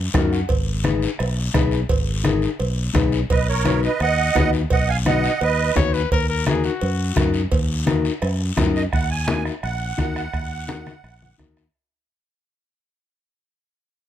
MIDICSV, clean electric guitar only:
0, 0, Header, 1, 2, 480
1, 0, Start_track
1, 0, Key_signature, -6, "minor"
1, 0, Tempo, 351494
1, 676, Time_signature, 4, 2, 24, 8
1, 19234, End_track
2, 0, Start_track
2, 0, Title_t, "Clean electric guitar"
2, 0, Program_c, 0, 27
2, 193, Note_on_c, 0, 63, 91
2, 199, Note_on_c, 0, 66, 82
2, 205, Note_on_c, 0, 70, 97
2, 205, Note_on_c, 0, 75, 72
2, 422, Note_off_c, 0, 75, 0
2, 439, Note_on_c, 0, 78, 71
2, 531, Note_off_c, 0, 63, 0
2, 533, Note_off_c, 0, 66, 0
2, 536, Note_off_c, 0, 70, 0
2, 661, Note_off_c, 0, 78, 0
2, 1148, Note_on_c, 0, 63, 85
2, 1154, Note_on_c, 0, 68, 78
2, 1161, Note_on_c, 0, 71, 90
2, 1488, Note_off_c, 0, 63, 0
2, 1490, Note_off_c, 0, 68, 0
2, 1494, Note_off_c, 0, 71, 0
2, 2106, Note_on_c, 0, 63, 87
2, 2114, Note_on_c, 0, 68, 86
2, 2120, Note_on_c, 0, 71, 98
2, 2447, Note_off_c, 0, 63, 0
2, 2452, Note_off_c, 0, 68, 0
2, 2452, Note_off_c, 0, 71, 0
2, 3057, Note_on_c, 0, 63, 86
2, 3065, Note_on_c, 0, 68, 82
2, 3070, Note_on_c, 0, 70, 86
2, 3402, Note_off_c, 0, 63, 0
2, 3405, Note_off_c, 0, 68, 0
2, 3408, Note_off_c, 0, 70, 0
2, 4013, Note_on_c, 0, 63, 90
2, 4020, Note_on_c, 0, 68, 81
2, 4026, Note_on_c, 0, 71, 90
2, 4360, Note_off_c, 0, 63, 0
2, 4363, Note_off_c, 0, 68, 0
2, 4366, Note_off_c, 0, 71, 0
2, 4977, Note_on_c, 0, 63, 76
2, 4984, Note_on_c, 0, 66, 65
2, 4991, Note_on_c, 0, 71, 80
2, 5322, Note_off_c, 0, 63, 0
2, 5326, Note_off_c, 0, 66, 0
2, 5327, Note_off_c, 0, 71, 0
2, 5943, Note_on_c, 0, 63, 76
2, 5953, Note_on_c, 0, 66, 67
2, 5957, Note_on_c, 0, 71, 85
2, 6285, Note_off_c, 0, 63, 0
2, 6290, Note_off_c, 0, 66, 0
2, 6291, Note_off_c, 0, 71, 0
2, 6906, Note_on_c, 0, 63, 68
2, 6913, Note_on_c, 0, 66, 65
2, 6922, Note_on_c, 0, 71, 78
2, 7246, Note_off_c, 0, 63, 0
2, 7250, Note_off_c, 0, 66, 0
2, 7252, Note_off_c, 0, 71, 0
2, 7860, Note_on_c, 0, 63, 76
2, 7869, Note_on_c, 0, 66, 69
2, 7873, Note_on_c, 0, 71, 86
2, 8203, Note_off_c, 0, 63, 0
2, 8206, Note_off_c, 0, 66, 0
2, 8209, Note_off_c, 0, 71, 0
2, 8828, Note_on_c, 0, 63, 82
2, 8840, Note_on_c, 0, 70, 98
2, 8841, Note_on_c, 0, 66, 79
2, 9168, Note_off_c, 0, 63, 0
2, 9171, Note_off_c, 0, 66, 0
2, 9173, Note_off_c, 0, 70, 0
2, 9776, Note_on_c, 0, 63, 87
2, 9787, Note_on_c, 0, 66, 82
2, 9787, Note_on_c, 0, 70, 103
2, 10122, Note_off_c, 0, 63, 0
2, 10124, Note_off_c, 0, 66, 0
2, 10126, Note_off_c, 0, 70, 0
2, 10738, Note_on_c, 0, 63, 88
2, 10744, Note_on_c, 0, 66, 76
2, 10750, Note_on_c, 0, 70, 95
2, 11081, Note_off_c, 0, 63, 0
2, 11085, Note_off_c, 0, 66, 0
2, 11088, Note_off_c, 0, 70, 0
2, 11699, Note_on_c, 0, 63, 84
2, 11707, Note_on_c, 0, 66, 80
2, 11715, Note_on_c, 0, 70, 102
2, 12042, Note_off_c, 0, 63, 0
2, 12046, Note_off_c, 0, 66, 0
2, 12050, Note_off_c, 0, 70, 0
2, 12663, Note_on_c, 0, 63, 66
2, 12673, Note_on_c, 0, 66, 62
2, 12675, Note_on_c, 0, 70, 75
2, 13005, Note_off_c, 0, 63, 0
2, 13008, Note_off_c, 0, 66, 0
2, 13010, Note_off_c, 0, 70, 0
2, 13622, Note_on_c, 0, 63, 67
2, 13628, Note_on_c, 0, 66, 67
2, 13634, Note_on_c, 0, 70, 80
2, 13964, Note_off_c, 0, 63, 0
2, 13968, Note_off_c, 0, 66, 0
2, 13969, Note_off_c, 0, 70, 0
2, 14581, Note_on_c, 0, 63, 77
2, 14591, Note_on_c, 0, 66, 75
2, 14594, Note_on_c, 0, 70, 94
2, 14924, Note_off_c, 0, 63, 0
2, 14930, Note_off_c, 0, 66, 0
2, 14931, Note_off_c, 0, 70, 0
2, 15542, Note_on_c, 0, 63, 81
2, 15555, Note_on_c, 0, 66, 73
2, 15556, Note_on_c, 0, 70, 83
2, 15887, Note_off_c, 0, 63, 0
2, 15889, Note_off_c, 0, 66, 0
2, 15892, Note_off_c, 0, 70, 0
2, 19234, End_track
0, 0, End_of_file